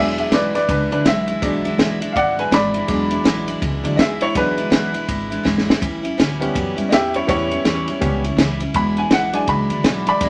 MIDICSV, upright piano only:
0, 0, Header, 1, 2, 480
1, 0, Start_track
1, 0, Tempo, 366524
1, 1852, Time_signature, 4, 2, 24, 8
1, 13478, End_track
2, 0, Start_track
2, 0, Title_t, "Upright piano"
2, 0, Program_c, 0, 0
2, 0, Note_on_c, 0, 54, 57
2, 0, Note_on_c, 0, 56, 50
2, 0, Note_on_c, 0, 62, 65
2, 0, Note_on_c, 0, 68, 95
2, 0, Note_on_c, 0, 76, 105
2, 214, Note_off_c, 0, 68, 0
2, 230, Note_off_c, 0, 76, 0
2, 248, Note_on_c, 0, 68, 57
2, 251, Note_on_c, 0, 76, 70
2, 410, Note_off_c, 0, 68, 0
2, 419, Note_off_c, 0, 76, 0
2, 433, Note_on_c, 0, 71, 74
2, 441, Note_on_c, 0, 74, 85
2, 663, Note_off_c, 0, 54, 0
2, 665, Note_off_c, 0, 56, 0
2, 668, Note_off_c, 0, 62, 0
2, 696, Note_off_c, 0, 71, 0
2, 705, Note_off_c, 0, 74, 0
2, 719, Note_on_c, 0, 71, 73
2, 725, Note_on_c, 0, 74, 86
2, 885, Note_off_c, 0, 71, 0
2, 896, Note_off_c, 0, 74, 0
2, 909, Note_on_c, 0, 62, 69
2, 920, Note_on_c, 0, 71, 74
2, 1174, Note_off_c, 0, 62, 0
2, 1192, Note_off_c, 0, 71, 0
2, 1201, Note_on_c, 0, 62, 72
2, 1215, Note_on_c, 0, 71, 71
2, 1367, Note_off_c, 0, 62, 0
2, 1381, Note_off_c, 0, 71, 0
2, 1405, Note_on_c, 0, 76, 93
2, 1854, Note_on_c, 0, 54, 59
2, 1859, Note_on_c, 0, 56, 58
2, 1867, Note_on_c, 0, 62, 64
2, 2321, Note_off_c, 0, 76, 0
2, 2784, Note_on_c, 0, 77, 62
2, 2818, Note_off_c, 0, 77, 0
2, 2831, Note_on_c, 0, 74, 88
2, 2841, Note_on_c, 0, 78, 90
2, 3097, Note_off_c, 0, 74, 0
2, 3113, Note_off_c, 0, 78, 0
2, 3134, Note_on_c, 0, 71, 71
2, 3143, Note_on_c, 0, 80, 84
2, 3295, Note_off_c, 0, 71, 0
2, 3306, Note_off_c, 0, 80, 0
2, 3317, Note_on_c, 0, 74, 89
2, 3325, Note_on_c, 0, 83, 98
2, 3723, Note_off_c, 0, 54, 0
2, 3725, Note_off_c, 0, 56, 0
2, 3729, Note_off_c, 0, 62, 0
2, 3764, Note_on_c, 0, 54, 60
2, 3771, Note_on_c, 0, 56, 55
2, 3785, Note_on_c, 0, 62, 64
2, 4694, Note_off_c, 0, 74, 0
2, 4708, Note_off_c, 0, 83, 0
2, 5006, Note_off_c, 0, 54, 0
2, 5010, Note_off_c, 0, 56, 0
2, 5018, Note_off_c, 0, 62, 0
2, 5026, Note_on_c, 0, 54, 48
2, 5029, Note_on_c, 0, 56, 42
2, 5037, Note_on_c, 0, 62, 54
2, 5188, Note_on_c, 0, 75, 67
2, 5195, Note_off_c, 0, 54, 0
2, 5197, Note_off_c, 0, 56, 0
2, 5201, Note_off_c, 0, 62, 0
2, 5222, Note_off_c, 0, 75, 0
2, 5235, Note_on_c, 0, 68, 82
2, 5244, Note_on_c, 0, 76, 89
2, 5499, Note_off_c, 0, 68, 0
2, 5516, Note_off_c, 0, 76, 0
2, 5520, Note_on_c, 0, 64, 86
2, 5528, Note_on_c, 0, 73, 94
2, 5688, Note_off_c, 0, 64, 0
2, 5693, Note_on_c, 0, 54, 61
2, 5699, Note_off_c, 0, 73, 0
2, 5701, Note_on_c, 0, 56, 52
2, 5705, Note_on_c, 0, 62, 62
2, 5727, Note_on_c, 0, 71, 107
2, 6430, Note_off_c, 0, 54, 0
2, 6434, Note_off_c, 0, 56, 0
2, 6436, Note_off_c, 0, 62, 0
2, 7109, Note_off_c, 0, 71, 0
2, 8382, Note_on_c, 0, 55, 59
2, 8391, Note_on_c, 0, 59, 58
2, 8399, Note_on_c, 0, 61, 65
2, 9023, Note_on_c, 0, 75, 64
2, 9058, Note_off_c, 0, 75, 0
2, 9074, Note_on_c, 0, 67, 89
2, 9079, Note_on_c, 0, 76, 98
2, 9339, Note_off_c, 0, 67, 0
2, 9353, Note_off_c, 0, 76, 0
2, 9370, Note_on_c, 0, 64, 76
2, 9376, Note_on_c, 0, 73, 80
2, 9487, Note_off_c, 0, 55, 0
2, 9501, Note_off_c, 0, 59, 0
2, 9507, Note_on_c, 0, 55, 53
2, 9509, Note_off_c, 0, 61, 0
2, 9520, Note_on_c, 0, 59, 52
2, 9521, Note_off_c, 0, 64, 0
2, 9528, Note_on_c, 0, 61, 65
2, 9530, Note_off_c, 0, 73, 0
2, 9540, Note_on_c, 0, 64, 88
2, 9550, Note_on_c, 0, 73, 103
2, 10457, Note_off_c, 0, 55, 0
2, 10465, Note_off_c, 0, 59, 0
2, 10472, Note_off_c, 0, 61, 0
2, 10476, Note_on_c, 0, 55, 47
2, 10485, Note_on_c, 0, 59, 45
2, 10491, Note_on_c, 0, 61, 58
2, 10750, Note_off_c, 0, 55, 0
2, 10754, Note_off_c, 0, 59, 0
2, 10758, Note_off_c, 0, 61, 0
2, 10925, Note_off_c, 0, 64, 0
2, 10939, Note_off_c, 0, 73, 0
2, 11470, Note_on_c, 0, 83, 92
2, 11748, Note_off_c, 0, 83, 0
2, 11764, Note_on_c, 0, 80, 83
2, 11937, Note_off_c, 0, 80, 0
2, 11955, Note_on_c, 0, 78, 89
2, 12205, Note_on_c, 0, 54, 56
2, 12213, Note_on_c, 0, 56, 55
2, 12224, Note_on_c, 0, 62, 67
2, 12230, Note_off_c, 0, 78, 0
2, 12243, Note_on_c, 0, 80, 91
2, 12416, Note_off_c, 0, 80, 0
2, 12428, Note_on_c, 0, 83, 89
2, 13172, Note_off_c, 0, 83, 0
2, 13204, Note_on_c, 0, 74, 90
2, 13211, Note_on_c, 0, 83, 101
2, 13338, Note_off_c, 0, 54, 0
2, 13345, Note_off_c, 0, 56, 0
2, 13352, Note_off_c, 0, 62, 0
2, 13358, Note_on_c, 0, 54, 60
2, 13365, Note_on_c, 0, 56, 48
2, 13372, Note_on_c, 0, 62, 65
2, 13478, Note_off_c, 0, 54, 0
2, 13478, Note_off_c, 0, 56, 0
2, 13478, Note_off_c, 0, 62, 0
2, 13478, Note_off_c, 0, 74, 0
2, 13478, Note_off_c, 0, 83, 0
2, 13478, End_track
0, 0, End_of_file